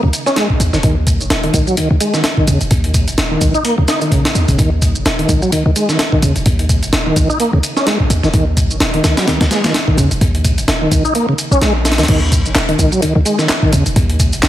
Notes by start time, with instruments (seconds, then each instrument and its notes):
0.03 808-style bass C#2, tonewheel organ C#3
0.13 closed hi-hat, shaker
0.26 tonewheel organ C#4, snare, shaker
0.36 tonewheel organ G#3, snare, closed hi-hat, shaker
0.50 kick
0.60 808-style bass D#2, closed hi-hat, shaker
0.73 808-style bass D#1, tonewheel organ D#3, snare, shaker
0.83 808-style bass D#2, tonewheel organ D#3, kick, closed hi-hat, shaker
1.07 kick, closed hi-hat, shaker
1.20 808-style bass D#1, shaker
1.30 808-style bass D#1, snare, closed hi-hat, shaker
1.43 tonewheel organ D#3, closed hi-hat
1.54 808-style bass C#2, tonewheel organ D#3, kick, closed hi-hat, shaker
1.67 tonewheel organ F#3, shaker
1.77 808-style bass C#2, tonewheel organ D#3, closed hi-hat, shaker
1.90 808-style bass C#2, tonewheel organ D#3
2.00 tonewheel organ G#3, closed hi-hat, shaker
2.14 tonewheel organ D#3, snare, shaker
2.24 snare, closed hi-hat, shaker
2.37 tonewheel organ D#3, kick
2.47 808-style bass D#2, tonewheel organ C#3, closed hi-hat, shaker
2.61 808-style bass D#1, closed hi-hat, shaker
2.71 808-style bass D#2, kick, closed hi-hat, shaker
2.84 closed hi-hat
2.94 kick, closed hi-hat, shaker
3.08 808-style bass D#1, closed hi-hat, shaker
3.18 808-style bass D#1, snare, closed hi-hat, shaker
3.31 tonewheel organ D#3
3.41 808-style bass C#2, kick, closed hi-hat, shaker
3.54 tonewheel organ D#4, shaker
3.65 tonewheel organ A#3, closed hi-hat, shaker
3.78 808-style bass C#2, tonewheel organ C#3
3.88 tonewheel organ D#4, snare, closed hi-hat, shaker
4.01 tonewheel organ D#3, closed hi-hat, shaker
4.12 tonewheel organ C#3, kick, closed hi-hat, shaker
4.25 snare, closed hi-hat
4.35 808-style bass D#2, closed hi-hat, shaker
4.48 808-style bass D#1, tonewheel organ C#3, kick, closed hi-hat, shaker
4.58 808-style bass D#2, tonewheel organ D#3, kick, closed hi-hat, shaker
4.82 kick, closed hi-hat, shaker
4.95 808-style bass D#1, shaker
5.05 808-style bass D#1, snare, closed hi-hat, shaker
5.19 tonewheel organ D#3, closed hi-hat
5.29 808-style bass C#2, tonewheel organ D#3, kick, closed hi-hat, shaker
5.42 tonewheel organ F#3, shaker
5.52 808-style bass C#2, tonewheel organ D#3, closed hi-hat, shaker
5.66 808-style bass C#2, tonewheel organ D#3
5.76 tonewheel organ G#3, closed hi-hat, shaker
5.89 tonewheel organ D#3, snare, shaker
5.99 snare, closed hi-hat, shaker
6.12 tonewheel organ D#3, kick
6.22 808-style bass D#2, tonewheel organ C#3, closed hi-hat, shaker
6.36 808-style bass D#1, closed hi-hat, shaker
6.46 808-style bass D#2, kick, closed hi-hat, shaker
6.59 closed hi-hat
6.69 kick, closed hi-hat, shaker
6.83 808-style bass D#1, closed hi-hat, shaker
6.93 808-style bass D#1, snare, closed hi-hat, shaker
7.06 tonewheel organ D#3
7.16 808-style bass C#2, kick, closed hi-hat, shaker
7.30 tonewheel organ D#4, shaker
7.40 tonewheel organ A#3, closed hi-hat, shaker
7.53 808-style bass C#2, tonewheel organ C#3
7.63 closed hi-hat, shaker
7.77 tonewheel organ C#4, snare, shaker
7.87 tonewheel organ G#3, snare, closed hi-hat, shaker
8.00 kick
8.10 808-style bass D#2, closed hi-hat, shaker
8.23 808-style bass D#1, tonewheel organ D#3, snare, shaker
8.34 808-style bass D#2, tonewheel organ D#3, kick, closed hi-hat, shaker
8.57 kick, closed hi-hat, shaker
8.70 808-style bass D#1, shaker
8.80 808-style bass D#1, snare, closed hi-hat, shaker
8.94 tonewheel organ D#3, closed hi-hat
9.04 808-style bass C#2, tonewheel organ D#3, snare, closed hi-hat, shaker
9.17 tonewheel organ F#3, snare, closed hi-hat, shaker
9.27 808-style bass C#2, tonewheel organ D#3, snare, closed hi-hat, shaker
9.41 808-style bass C#2, tonewheel organ D#3, snare, closed hi-hat
9.51 tonewheel organ G#3, snare, closed hi-hat, shaker
9.64 tonewheel organ D#3, snare, closed hi-hat, shaker
9.74 snare, closed hi-hat, shaker
9.88 tonewheel organ D#3, kick
9.98 808-style bass D#2, tonewheel organ C#3, closed hi-hat, shaker
10.11 808-style bass D#1, closed hi-hat, shaker
10.21 808-style bass D#2, kick, closed hi-hat, shaker
10.35 closed hi-hat
10.45 kick, closed hi-hat, shaker
10.58 808-style bass D#1, closed hi-hat, shaker
10.68 808-style bass D#1, snare, closed hi-hat, shaker
10.81 tonewheel organ D#3
10.91 808-style bass C#2, kick, closed hi-hat, shaker
11.05 tonewheel organ D#4, shaker
11.15 tonewheel organ A#3, closed hi-hat, shaker
11.29 tonewheel organ C#3
11.38 closed hi-hat, shaker
11.51 808-style bass A#1, tonewheel organ C#4, shaker
11.62 808-style bass A#1, tonewheel organ G#3, snare, closed hi-hat, shaker
11.85 snare, closed hi-hat, shaker
11.92 snare, closed hi-hat
11.98 808-style bass D#2, tonewheel organ D#3, snare, closed hi-hat, shaker
12.03 snare, closed hi-hat
12.08 808-style bass D#2, tonewheel organ D#3, kick, closed hi-hat, crash, shaker
12.32 kick, closed hi-hat, shaker
12.45 808-style bass D#1, shaker
12.55 808-style bass D#1, snare, clap, closed hi-hat, shaker
12.69 tonewheel organ D#3, closed hi-hat
12.79 808-style bass C#2, tonewheel organ D#3, kick, closed hi-hat, shaker
12.92 tonewheel organ F#3, shaker
13.02 808-style bass C#2, tonewheel organ D#3, closed hi-hat, shaker
13.15 808-style bass C#2, tonewheel organ D#3
13.25 tonewheel organ G#3, closed hi-hat, shaker
13.39 tonewheel organ D#3, snare, shaker
13.49 snare, clap, closed hi-hat, shaker
13.62 tonewheel organ D#3, kick
13.72 808-style bass D#2, tonewheel organ C#3, closed hi-hat, shaker
13.86 808-style bass D#1, closed hi-hat, shaker
13.96 808-style bass D#2, kick, closed hi-hat, shaker
14.10 closed hi-hat
14.19 kick, closed hi-hat, shaker
14.33 808-style bass D#1, closed hi-hat, shaker
14.43 808-style bass D#1, snare, clap, closed hi-hat, shaker